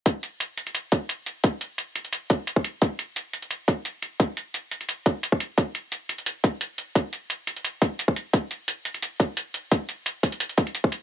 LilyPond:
\new DrumStaff \with { instrumentName = "Drums" } \drummode { \time 4/4 \tempo 4 = 174 <hh bd>8 hh8 hh8 hh16 hh16 hh8 <hh bd>8 hh8 hh8 | <hh bd>8 hh8 hh8 hh16 hh16 hh8 <hh bd>8 hh16 bd16 hh8 | <hh bd>8 hh8 hh8 hh16 hh16 hh8 <hh bd>8 hh8 hh8 | <hh bd>8 hh8 hh8 hh16 hh16 hh8 <hh bd>8 hh16 bd16 hh8 |
<hh bd>8 hh8 hh8 hh16 hh16 hh8 <hh bd>8 hh8 hh8 | <hh bd>8 hh8 hh8 hh16 hh16 hh8 <hh bd>8 hh16 bd16 hh8 | <hh bd>8 hh8 hh8 hh16 hh16 hh8 <hh bd>8 hh8 hh8 | <hh bd>8 hh8 hh8 <hh bd>16 hh16 hh16 hh16 <hh bd>16 hh16 hh16 bd16 hh8 | }